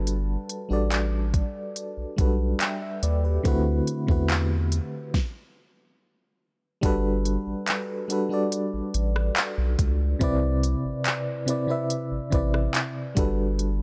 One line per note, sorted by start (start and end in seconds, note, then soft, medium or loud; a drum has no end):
0.00 0.37 G1 loud
0.00 0.48 G3 medium
0.00 0.49 D4 medium
0.00 0.49 F#4 medium
0.00 0.50 A4 medium
0.00 0.51 B4 loud
0.00 3.47 A5 medium
0.07 closed hi-hat medium
0.49 closed hi-hat medium
0.69 1.42 A1 medium
0.69 1.67 G3 medium
0.69 1.68 D4 medium
0.69 1.68 F#4 medium
0.69 1.69 A4 medium
0.73 1.70 D5 medium
0.91 clap loud
0.91 closed hi-hat medium
1.34 kick loud
1.34 closed hi-hat medium
1.76 closed hi-hat medium
1.97 2.06 B1 soft
2.16 2.54 B1 loud
2.16 3.01 G3 medium
2.16 3.02 D4 medium
2.16 2.61 F#4 medium
2.16 2.61 A4 medium
2.16 kick medium
2.16 closed hi-hat medium
2.21 2.62 B4 medium
2.60 2.81 E5 medium
2.60 2.81 G5 medium
2.60 clap loud
2.60 closed hi-hat medium
2.82 3.02 E5 medium
3.03 3.39 D#2 medium
3.03 3.23 B4 medium
3.03 3.23 D5 medium
3.03 closed hi-hat medium
3.24 3.65 G4 medium
3.24 3.47 B4 medium
3.43 3.81 D2 loud
3.43 3.86 D3 loud
3.43 3.87 A3 loud
3.43 3.87 C4 loud
3.43 3.87 E4 loud
3.43 3.88 F#4 loud
3.43 kick loud
3.43 closed hi-hat medium
3.48 3.88 B4 loud
3.87 closed hi-hat medium
4.07 4.80 E2 medium
4.07 5.13 D3 medium
4.07 5.14 A3 medium
4.07 5.14 C4 medium
4.07 5.15 E4 medium
4.07 5.15 F#4 medium
4.07 kick medium
4.11 5.15 B4 medium
4.29 clap loud
4.29 closed hi-hat medium
4.72 closed hi-hat medium
5.14 kick loud
5.14 snare medium
6.81 7.37 G1 loud
6.81 7.66 G3 loud
6.81 7.67 D4 loud
6.81 7.67 F#4 loud
6.81 7.68 A4 loud
6.81 kick loud
6.81 closed hi-hat medium
6.86 7.68 B4 loud
7.25 closed hi-hat medium
7.47 7.55 A1 soft
7.67 clap loud
7.67 closed hi-hat medium
8.08 8.23 G3 medium
8.08 8.23 D4 medium
8.08 8.24 F#4 medium
8.08 8.25 A4 medium
8.08 closed hi-hat medium
8.12 8.25 B4 loud
8.29 9.42 G3 medium
8.29 9.42 D4 medium
8.29 9.43 F#4 medium
8.29 9.43 A4 medium
8.34 9.44 D5 loud
8.52 closed hi-hat medium
8.73 8.82 A1 soft
8.94 9.30 A1 medium
8.94 closed hi-hat medium
9.16 cross-stick medium
9.36 clap loud
9.36 closed hi-hat medium
9.58 9.76 B1 loud
9.79 10.15 C#2 loud
9.79 kick medium
9.79 closed hi-hat medium
10.19 10.75 C2 loud
10.19 11.04 C3 loud
10.19 11.05 C4 loud
10.19 11.05 E4 loud
10.19 11.06 B4 loud
10.19 kick loud
10.19 closed hi-hat medium
10.24 11.06 D5 loud
10.63 closed hi-hat medium
10.85 10.93 A1 soft
11.05 clap loud
11.05 closed hi-hat medium
11.46 11.61 C3 medium
11.46 11.61 C4 medium
11.46 11.62 E4 medium
11.46 11.62 B4 medium
11.46 closed hi-hat medium
11.50 11.63 D5 loud
11.67 12.10 C3 medium
11.67 12.10 C4 medium
11.67 12.11 E4 medium
11.67 12.12 B4 medium
11.71 12.12 E5 loud
11.90 closed hi-hat medium
12.11 12.20 A1 soft
12.30 12.68 A1 loud
12.30 13.15 C3 medium
12.30 13.16 C4 medium
12.30 13.16 E4 medium
12.30 13.17 B4 medium
12.30 kick medium
12.30 closed hi-hat medium
12.35 13.17 D5 loud
12.54 cross-stick medium
12.75 clap loud
12.75 closed hi-hat medium
13.15 13.82 G1 loud
13.15 13.82 G3 medium
13.15 13.82 D4 medium
13.15 13.82 F#4 medium
13.15 13.82 A4 medium
13.15 kick loud
13.15 closed hi-hat medium
13.19 13.82 B4 loud
13.59 closed hi-hat medium